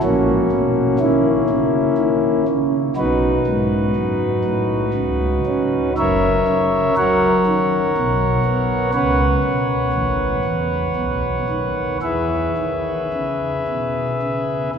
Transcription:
0.03 0.44 A#1 medium
0.03 0.44 A#2 medium
0.03 0.98 A#3 medium
0.03 0.98 C#4 medium
0.03 0.97 F#4 loud
0.52 0.93 B2 medium
0.99 1.41 D#3 medium
0.99 2.44 A#3 medium
0.99 2.44 C#4 medium
0.99 2.44 E4 medium
1.49 1.91 C#3 medium
1.98 2.40 D#3 medium
2.48 2.90 C#3 medium
2.96 3.38 B1 medium
2.96 3.39 B2 medium
2.96 5.93 D#4 medium
2.96 5.93 F#4 medium
2.96 5.93 B4 loud
3.47 3.89 G#2 medium
3.96 4.38 F#2 medium
4.45 4.87 A2 medium
4.94 5.38 C#2 medium
4.94 5.37 C#3 medium
5.46 5.90 C#4 medium
5.97 6.40 F#1 medium
5.97 6.40 F#2 medium
5.97 6.95 A#4 medium
5.97 6.95 C#5 medium
5.97 6.95 E5 loud
6.48 6.90 C#3 medium
6.97 7.39 F#3 medium
6.97 8.90 A#4 medium
6.97 8.91 C#5 medium
6.97 8.90 F#5 loud
7.47 7.89 D#3 medium
7.97 8.38 B1 medium
7.97 8.39 B2 medium
8.45 8.87 B3 medium
8.94 9.36 C#2 medium
8.94 9.36 C#3 medium
8.94 11.98 B4 medium
8.94 11.98 C#5 loud
8.94 11.97 F#5 loud
9.44 9.86 B2 medium
9.93 10.36 A1 medium
9.93 10.37 A2 medium
10.45 10.88 E2 medium
10.96 11.40 B1 medium
10.96 11.40 B2 medium
11.50 11.95 D#3 soft
12.02 12.49 E2 medium
12.02 12.49 E3 medium
12.02 14.71 G#4 medium
12.02 14.70 B4 medium
12.02 14.71 E5 medium
12.58 13.04 D#3 soft
13.14 13.59 C#3 medium
13.68 14.13 B2 soft
14.23 14.67 C#3 soft

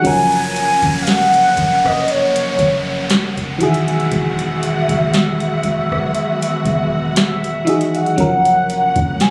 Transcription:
0.02 0.80 F#1 loud
0.02 3.57 C#3 medium
0.02 1.85 F3 medium
0.02 1.83 F#3 medium
0.02 3.57 A#3 medium
0.02 1.84 C#4 medium
0.02 3.57 C#4 medium
0.02 8.14 F#5 medium
0.02 kick loud
0.02 closed hi-hat medium
0.02 crash medium
0.02 downlifter medium
0.06 1.86 A#4 medium
0.06 1.01 G#5 loud
0.32 closed hi-hat medium
0.56 closed hi-hat medium
0.82 1.54 F#1 loud
0.82 kick loud
0.82 closed hi-hat soft
1.02 1.10 F5 medium
1.07 1.88 F#5 loud
1.07 snare loud
1.07 closed hi-hat medium
1.34 closed hi-hat medium
1.57 2.55 F#1 loud
1.57 kick medium
1.57 closed hi-hat medium
1.85 2.12 D#5 medium
1.85 kick medium
1.85 cross-stick medium
2.08 3.11 C#5 medium
2.08 closed hi-hat medium
2.36 closed hi-hat medium
2.58 3.34 F#1 loud
2.58 kick medium
2.58 closed hi-hat medium
3.10 snare loud
3.10 closed hi-hat medium
3.37 4.08 E1 loud
3.37 kick loud
3.37 closed hi-hat soft
3.58 5.40 D#3 medium
3.58 5.40 E3 medium
3.58 8.14 F#3 medium
3.58 8.14 G#3 medium
3.58 8.14 B3 medium
3.58 8.14 F#4 medium
3.58 5.41 F#4 medium
3.58 closed hi-hat medium
3.63 5.42 G#4 medium
3.63 3.87 E5 medium
3.74 closed hi-hat medium
3.88 7.13 E5 loud
3.88 closed hi-hat medium
4.00 closed hi-hat soft
4.11 4.87 E1 loud
4.11 kick loud
4.11 closed hi-hat medium
4.39 closed hi-hat medium
4.63 closed hi-hat medium
4.89 5.61 E1 loud
4.89 kick medium
4.89 closed hi-hat soft
5.14 snare loud
5.14 closed hi-hat medium
5.40 closed hi-hat medium
5.63 6.13 E1 loud
5.63 kick medium
5.63 closed hi-hat medium
5.91 kick medium
5.91 cross-stick medium
6.15 closed hi-hat medium
6.42 closed hi-hat medium
6.65 7.63 E1 loud
6.65 kick medium
6.65 closed hi-hat medium
7.16 7.98 E5 loud
7.16 snare loud
7.16 closed hi-hat medium
7.44 closed hi-hat soft
7.65 8.11 E3 medium
7.65 8.12 D#4 medium
7.65 8.13 F#4 medium
7.65 closed hi-hat medium
7.69 8.13 G#4 medium
7.81 closed hi-hat medium
7.95 9.23 F#5 loud
7.95 closed hi-hat medium
8.06 closed hi-hat soft
8.16 8.93 F#1 loud
8.16 9.30 C#3 medium
8.16 9.30 F3 medium
8.16 9.30 F#3 medium
8.16 9.30 A#3 medium
8.16 9.30 C#4 medium
8.16 9.30 F#5 medium
8.16 kick loud
8.16 closed hi-hat medium
8.20 9.30 A#4 medium
8.45 closed hi-hat medium
8.70 closed hi-hat medium
8.96 9.30 C#2 loud
8.96 kick medium
8.96 closed hi-hat soft
9.20 9.30 G#5 loud
9.20 snare loud
9.20 closed hi-hat medium

